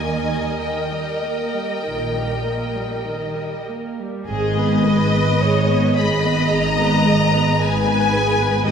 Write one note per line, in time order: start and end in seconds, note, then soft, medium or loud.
0.00 0.41 D#2 soft
0.00 0.40 D#3 medium
0.00 0.29 A#3 soft
0.00 4.06 A#4 soft
0.00 3.63 D#5 soft
0.00 0.60 G#5 medium
0.28 0.61 G3 soft
0.60 0.93 D#3 soft
0.60 3.68 G5 medium
0.92 1.25 G3 soft
1.23 1.56 A#3 soft
1.56 1.87 G3 soft
1.86 2.87 A#1 soft
1.86 2.87 A#2 soft
1.86 2.14 D#3 soft
2.15 2.46 G3 soft
2.45 2.76 A#3 soft
2.76 3.06 G3 soft
3.06 3.37 D#3 soft
3.37 3.68 G3 soft
3.69 3.99 A#3 soft
3.99 4.28 G3 soft
4.27 5.26 G#1 medium
4.27 5.27 G#2 medium
4.27 4.54 G#3 medium
4.27 4.80 G#4 medium
4.27 4.54 G#4 medium
4.27 5.91 D#5 medium
4.57 4.85 B3 soft
4.57 4.84 B4 soft
4.84 5.12 G#3 soft
4.84 5.12 G#4 soft
4.84 5.40 B4 medium
5.13 5.40 B3 soft
5.13 5.40 B4 soft
5.39 6.37 G#1 medium
5.39 6.38 G#2 medium
5.39 5.66 G#3 soft
5.39 5.66 G#4 soft
5.39 5.96 C#5 medium
5.69 5.97 B3 soft
5.69 5.96 B4 soft
5.95 6.24 G#3 soft
5.95 6.24 G#4 soft
5.95 7.56 D#5 medium
5.95 6.52 B5 medium
6.23 6.51 B3 soft
6.23 6.51 B4 medium
6.49 7.47 G#1 medium
6.49 7.47 G#2 medium
6.49 6.76 G#3 medium
6.49 6.76 G#4 medium
6.49 7.59 A#5 medium
6.79 7.06 B3 soft
6.79 7.06 B4 soft
7.06 7.33 G#3 soft
7.06 7.33 G#4 medium
7.33 7.60 B3 soft
7.33 7.60 B4 soft
7.59 8.53 G#1 medium
7.59 8.53 G#2 medium
7.59 7.85 G#3 soft
7.59 7.85 G#4 soft
7.59 8.66 B4 medium
7.59 8.66 G#5 medium
7.87 8.13 B3 soft
7.87 8.13 B4 soft
8.14 8.40 G#3 soft
8.14 8.40 G#4 soft
8.40 8.66 B3 soft
8.40 8.66 B4 soft
8.65 8.71 G#1 medium
8.65 8.71 G#2 medium
8.65 8.71 D#4 medium
8.65 8.71 G4 medium
8.65 8.71 A#4 medium
8.65 8.71 D#5 medium